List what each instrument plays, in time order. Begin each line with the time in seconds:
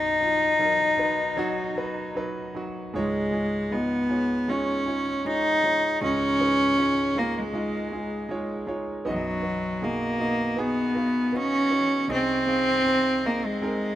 Already playing: grand piano B1 F#2 F#3 D#4 B4, cello D#4
0.21 grand piano F#3 D#4 F4
0.59 grand piano F#3 D#4 A#4
0.98 grand piano F#3 D#4 B4
1.37 grand piano F#3 D#4 F#4
1.76 grand piano F#3 D#4 B4
2.15 grand piano F#3 D#4 B4
2.55 grand piano F#3 D#4 F#4
2.94 grand piano C#2 G#2 G#3 D#4 F4 C#5, cello G#3
3.32 grand piano G#3 D#4 F4 C#5
3.71 grand piano G#3 D#4 F4 D#5, cello B3
4.09 grand piano G#3 D#4 F4 C#5
4.48 grand piano G#3 D#4 F4 C#5, cello C#4
4.86 grand piano G#3 D#4 F4 C#5
5.25 grand piano G#3 D#4 F4 C#5, cello D#4
5.64 grand piano G#3 D#4 F4 C#5
6.01 grand piano C#2 G#2 G#3 D#4 F4 D#5, cello C#4
6.39 grand piano G#3 D#4 F4 B4
6.77 grand piano G#3 D#4 F4 C#5
7.15 grand piano G#3 D#4 F4 A#4, cello A#3
7.38 cello G#3
7.53 grand piano G#3 D#4 F4 D#5
7.92 grand piano G#3 D#4 F4 G#4
8.29 grand piano G#3 D#4 F4 C#5
8.67 grand piano G#3 D#4 F4 C#5
9.05 grand piano B1 F#2 B3 D#4 F#4 D#5, cello F#3
9.42 grand piano B3 D#4 F#4 D#5
9.81 grand piano B2 D#4 F#4 G#4, cello A#3
10.19 grand piano B2 D#4 F#4 D#5
10.57 grand piano B3 D#4 F#4 G#4, cello B3
10.95 grand piano B3 D#4 F#4 F5
11.33 grand piano B3 D#4 F#4 D#5, cello C#4
11.70 grand piano B3 D#4 F#4 C#5
12.08 grand piano C2 C3 C4 D#4 G#4 D#5, cello C4
12.47 grand piano C4 D#4 G#4 F5
12.84 grand piano C4 D#4 G#4 C5
13.24 cello A#3, grand piano C4 D#4 G#4 D#5
13.46 cello G#3
13.61 grand piano C4 D#4 G#4 A#4